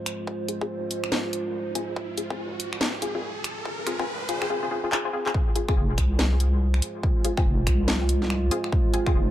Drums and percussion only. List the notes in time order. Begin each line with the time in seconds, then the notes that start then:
0.06 finger snap, closed hi-hat
0.27 kick
0.48 closed hi-hat
0.61 kick
0.91 closed hi-hat
1.04 finger snap
1.12 snare
1.33 closed hi-hat
1.75 closed hi-hat
1.96 kick
2.18 closed hi-hat
2.30 kick
2.60 closed hi-hat
2.73 finger snap
2.81 snare
3.02 closed hi-hat
3.44 finger snap, closed hi-hat
3.65 kick
3.87 finger snap, closed hi-hat
3.99 kick
4.29 closed hi-hat
4.42 finger snap
4.92 clap
5.26 clap
5.34 kick
5.56 closed hi-hat
5.68 finger snap, kick
5.98 finger snap, kick, closed hi-hat
6.19 snare
6.40 closed hi-hat
6.74 finger snap
6.82 closed hi-hat
7.03 kick
7.25 closed hi-hat
7.37 finger snap, kick
7.67 finger snap, kick, closed hi-hat
7.88 snare
8.09 closed hi-hat
8.22 snare
8.30 finger snap
8.51 closed hi-hat
8.64 finger snap
8.72 kick
8.94 closed hi-hat
9.06 finger snap, kick